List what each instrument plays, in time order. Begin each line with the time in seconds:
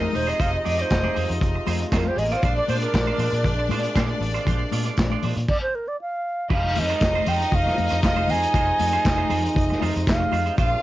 Already playing: french horn section C3 F3 G#3 D#4, string section D#4 D#5, alto flute A#4
0.02 muted clean electric guitar stroke, muted conga, high conga
0.13 fingered electric bass E1, alto flute C5, muted clean electric guitar stroke, open hi-hat, high conga
0.27 clean electric guitar C4 D#4 G#4 C5, alto flute D#5, closed hi-hat
0.39 fingered electric bass F1, clean electric guitar C4 D#4 G#4 C5, french horn section F4, alto flute F5, kick, closed hi-hat
0.55 alto flute D#5
0.64 fingered electric bass F2, clean electric guitar C4 D#4 G#4 D5, open hi-hat, high conga
0.79 clean electric guitar C4 D#4 G#4 D5, alto flute C5, closed hi-hat
0.90 fingered electric bass F1, muted clean electric guitar stroke, kick, snare, clap, closed hi-hat, tambourine
1.03 clean electric guitar C4 D#4 G#4 D5, muted conga, high conga
1.15 fingered electric bass F2, clean electric guitar C4 D#4 G#4 C5, open hi-hat, low conga
1.28 fingered electric bass F2, muted clean electric guitar stroke, closed hi-hat
1.41 fingered electric bass F1, muted clean electric guitar stroke, kick, closed hi-hat, muted conga, low conga
1.55 muted clean electric guitar stroke
1.67 fingered electric bass F2, clean electric guitar C4 D#4 G#4 C5, open hi-hat, high conga
1.80 muted clean electric guitar stroke, closed hi-hat
1.92 fingered electric bass F2, string section D#3 D#4, clean electric guitar C4 D#4 G#4 C5, alto flute A#4, kick, snare, clap, closed hi-hat, tambourine
2.02 string section F3 F4, high conga
2.06 string section G3 G4, alto flute C5, muted clean electric guitar stroke
2.17 fingered electric bass A1, string section G#3 G#4, alto flute D#5, muted clean electric guitar stroke, open hi-hat, high conga
2.26 string section A#3 A#4
2.32 clean electric guitar C4 D#4 G#4 D5, string section C4 C5, alto flute F5, closed hi-hat
2.42 fingered electric bass A#1, french horn section G#3 A#3 D4, clean electric guitar G#3 D4 F4 C5, string section D4 D5, kick, closed hi-hat, muted conga
2.57 alto flute D5, muted conga
2.68 fingered electric bass A#2, clean electric guitar G#3 D4 F4 C5, alto flute C5, open hi-hat, high conga
2.81 clean electric guitar G#3 D4 F4 D5, alto flute A#4, closed hi-hat
2.93 fingered electric bass A#1, muted clean electric guitar stroke, kick, snare, clap, closed hi-hat, tambourine, muted conga
3.06 clean electric guitar G#3 D4 F4 C5, muted conga, high conga
3.18 fingered electric bass A#2, clean electric guitar G#3 D4 F4 C5, open hi-hat, low conga
3.32 fingered electric bass A#2, muted clean electric guitar stroke, closed hi-hat
3.43 fingered electric bass A#1, muted clean electric guitar stroke, kick, closed hi-hat, muted conga, low conga
3.59 muted clean electric guitar stroke
3.69 fingered electric bass A#2, clean electric guitar G#3 D4 F4 C5, open hi-hat, high conga
3.84 muted clean electric guitar stroke, closed hi-hat
3.95 fingered electric bass A#2, clean electric guitar G#3 D4 F4 C5, kick, snare, clap, closed hi-hat, tambourine
4.09 muted clean electric guitar stroke, high conga
4.21 fingered electric bass A1, muted clean electric guitar stroke, open hi-hat, high conga
4.34 clean electric guitar G#3 D4 F4 C5, closed hi-hat
4.45 fingered electric bass A#1, clean electric guitar G#3 D4 F4 C5, kick, closed hi-hat, muted conga, low conga
4.59 muted conga
4.71 fingered electric bass A#2, clean electric guitar G#3 D4 F4 D5, open hi-hat, high conga
4.86 clean electric guitar G#3 D4 F4 D5, closed hi-hat
4.97 fingered electric bass A#1, muted clean electric guitar stroke, kick, snare, clap, closed hi-hat, tambourine
5.10 clean electric guitar G#3 D4 F4 D5, muted conga, high conga
5.22 fingered electric bass A#2, clean electric guitar G#3 D4 F4 C5, open hi-hat, low conga
5.36 fingered electric bass A#2, muted clean electric guitar stroke, closed hi-hat
5.48 alto flute D5, kick, crash
5.62 alto flute C5
5.75 alto flute A#4
5.88 alto flute D5
6.01 alto flute F5
6.49 fingered electric bass F1, french horn section C3 F3 G#3 D#4, clean electric guitar G#3 D#4 F4 C5, string section D#4 D#5, alto flute F5, kick, crash
6.63 muted clean electric guitar stroke, muted conga
6.75 fingered electric bass F2, alto flute D#5, muted clean electric guitar stroke, open hi-hat, high conga
6.89 clean electric guitar G#3 D#4 F4 C5, closed hi-hat
7.01 fingered electric bass F1, muted clean electric guitar stroke, kick, snare, clap, closed hi-hat, tambourine
7.14 clean electric guitar G#3 D#4 F4 C5, muted conga, high conga
7.26 fingered electric bass F2, clean electric guitar G#3 D#4 F4 C5, alto flute G5, open hi-hat, low conga
7.41 muted clean electric guitar stroke, closed hi-hat
7.52 fingered electric bass F1, alto flute F5, muted clean electric guitar stroke, kick, closed hi-hat, muted conga, low conga
7.65 muted clean electric guitar stroke, snare, muted conga
7.78 fingered electric bass F2, open hi-hat, high conga
7.91 fingered electric bass F2, muted clean electric guitar stroke, closed hi-hat
8.02 fingered electric bass F1, alto flute F5, muted clean electric guitar stroke, kick, snare, clap, closed hi-hat, tambourine, muted conga
8.16 clean electric guitar G#3 D#4 F4 C5, high conga
8.27 fingered electric bass F2, clean electric guitar G#3 D#4 F4 C5, alto flute G#5, open hi-hat, high conga
8.42 muted clean electric guitar stroke, closed hi-hat
8.54 fingered electric bass F1, clean electric guitar G#3 D#4 F4 C5, kick, closed hi-hat
8.68 muted clean electric guitar stroke
8.79 fingered electric bass F2, muted clean electric guitar stroke, open hi-hat, high conga
8.93 clean electric guitar G#3 D#4 F4 C5, closed hi-hat
9.04 fingered electric bass F1, muted clean electric guitar stroke, kick, snare, clap, closed hi-hat, tambourine, muted conga
9.17 clean electric guitar G#3 D#4 F4 C5, muted conga, high conga
9.29 fingered electric bass F2, clean electric guitar G#3 D#4 F4 C5, open hi-hat, low conga
9.44 muted clean electric guitar stroke, closed hi-hat
9.55 fingered electric bass F1, muted clean electric guitar stroke, kick, closed hi-hat, muted conga, low conga
9.69 muted clean electric guitar stroke, snare, muted conga
9.81 fingered electric bass F2, clean electric guitar G#3 D#4 F4 C5, open hi-hat, high conga
9.95 fingered electric bass F2, muted clean electric guitar stroke, closed hi-hat
10.07 fingered electric bass F1, alto flute F5, muted clean electric guitar stroke, kick, snare, clap, closed hi-hat, tambourine
10.20 muted clean electric guitar stroke, high conga
10.31 fingered electric bass F2, clean electric guitar G#3 D#4 F4 C5, open hi-hat, high conga
10.46 clean electric guitar G#3 D#4 F4 C5, closed hi-hat
10.57 fingered electric bass A#1, clean electric guitar G#3 D4 F4 C5, french horn section G#3 A#3 D4, string section F4 F5, alto flute F5, kick, closed hi-hat, muted conga
10.71 muted clean electric guitar stroke, muted conga